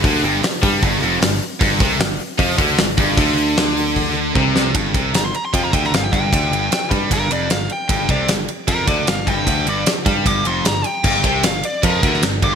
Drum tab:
CC |----------------|----------------|----------------|----------------|
RD |----------------|----------------|----------------|x-x-x-x-x-x-x-x-|
HH |o-o-o-o-o-o-o-o-|o-o-o-o-o-o-o-o-|o-o-o-o---------|----------------|
SD |----o-------o---|----o-------o---|----o---------o-|----o------oo---|
BD |o-----o-o-------|o-o-----o-o---o-|o-------o---o---|o-o-----o-o---o-|

CC |----------------|----------------|----------------|x---------------|
RD |x-x-x-x-x-x-x-x-|x-x-x-x-x-x-x-x-|x-x-x-x-x-x-x-x-|--x-x-x-x-x-x-x-|
HH |----------------|----------------|----------------|----------------|
SD |----o-------o---|----o-------o---|----o-------o---|----o------oo---|
BD |o-----o-o-------|o-o-----o-o---o-|o-----o-o-------|o-o-----o-o---o-|